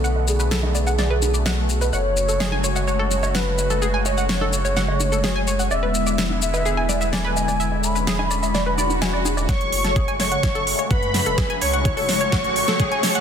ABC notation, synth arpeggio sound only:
X:1
M:4/4
L:1/16
Q:1/4=127
K:F#m
V:1 name="Synth arpeggio sound"
f z2 B A z d f d B z d f z2 B | f z2 A G g c f c A z c f z2 A | G g c f c A z c f z2 A G g c f | d B z d e z2 B G g d e d B z d |
e z2 B G g d e d B d z g d G d | f z2 A G g c f c A z c f z2 A | G g c f c A z c f z2 A G g c f |]